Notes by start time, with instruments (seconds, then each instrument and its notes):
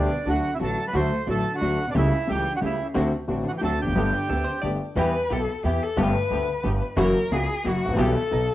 Already playing: cello B2, bandoneon D4 D5
0.25 upright bass D2, grand piano D2 D3 F#3 A3 F#4, cello D3, string section A3 D4 F#4, bandoneon F#4
0.30 bandoneon F#5
0.54 cello C3, bandoneon E4 E5
0.58 upright bass A1, grand piano A1 A2 D3 F#3 A3 F#4, cello F#3, string section A3 D4 F#4
0.63 bandoneon A4 A5
0.87 cello G3, bandoneon B4 B5
0.92 upright bass D2, grand piano D2 D3 F#3 A3 F#4, string section A3 D4 F#4, cello A3, bandoneon C5
0.99 bandoneon C6
1.26 upright bass A1, grand piano A1 A2 D3 F#3 A3 F#4, cello F#3, string section A3 D4 F#4
1.30 bandoneon A4 A5
1.54 cello D3, bandoneon F#4 F#5
1.60 grand piano D2 D3 F#3 A3 F#4, upright bass D2, string section A3 D4 F#4
1.87 cello B2, bandoneon D4 D5
1.94 upright bass C#2, grand piano C#2 C#3 G3 A3 E4, cello C#3, string section A3 C#4 G4, bandoneon E4
1.98 bandoneon E5
2.27 grand piano C#2 C#3 G3 A3 E4, upright bass C#2, cello E3, string section A3 C#4 G4, bandoneon G4
2.31 bandoneon G5
2.52 cello D3, bandoneon F#4
2.56 bandoneon F#5
2.61 grand piano C#2 C#3 G3 A3 E4, upright bass C#2, cello C#3, string section A3 C#4 G4
2.65 bandoneon E4 E5
2.94 grand piano D2 D3 A3 C4 F#4, upright bass D2, string section C4 D4 F#4
3.27 grand piano A1 A2 D3 A3 C4 F#4, upright bass A1, string section C4 D4 F#4
3.44 cello D3
3.48 cello E3, bandoneon F#4 F#5
3.58 grand piano D2 D3 A3 C4 F#4, cello F#3, string section C4, bandoneon G4 G5
3.62 upright bass D2, string section D4 F#4, bandoneon A4 A5
3.78 cello D3, bandoneon G4 G5
3.83 upright bass E1, grand piano E2 F2
3.88 upright bass F1, grand piano F#2
3.92 upright bass F#1 G1, grand piano G1 G2 D3 A3 B3 G4, string section A3 B3 G4
4.28 grand piano D2 D3 A3 B3 G4, upright bass D2, string section A3 B3 G4, hollow-body jazz guitar A4
4.44 hollow-body jazz guitar C5
4.62 grand piano G1 G2 D3 A3 B3 G4, upright bass G1, string section A3 B3 G4, hollow-body jazz guitar D5
4.96 upright bass E2, grand piano E2 E3 G3 B3 G4, string section B3 E4 G4, cello B4
5.30 grand piano B1 B2, upright bass B1, string section B3 E4 G4, cello A4
5.64 grand piano E2 E3, upright bass E2, string section B3 E4 G4, cello G4
5.83 cello A4
5.97 upright bass G1, grand piano G1 G2 D3 A3 B3 G4, string section A3 B3 G4, cello B4
6.31 upright bass D2, grand piano D2 D3, string section A3 B3 G4
6.64 grand piano G1 G2, upright bass G1, string section A3 B3 G4
6.97 upright bass F#1, grand piano F#2 E3 F#3 A#3 C#4 F#4, string section A#3 E4 F#4, cello A#4
7.31 upright bass C#2, grand piano C#2 C#3, string section A#3 E4 F#4, cello G#4
7.64 upright bass F#1, grand piano F#2 F#3, string section A#3 E4 F#4, cello F#4
7.85 grand piano G#1 A1, upright bass G#1
7.90 upright bass A1, grand piano A#1
7.95 upright bass A#1 B1, grand piano B1 B2 E3 G3 B3 G4, string section B3 E4 G4
8.02 cello A4
8.31 grand piano B1 B2, upright bass B1, string section B3 D#4 A4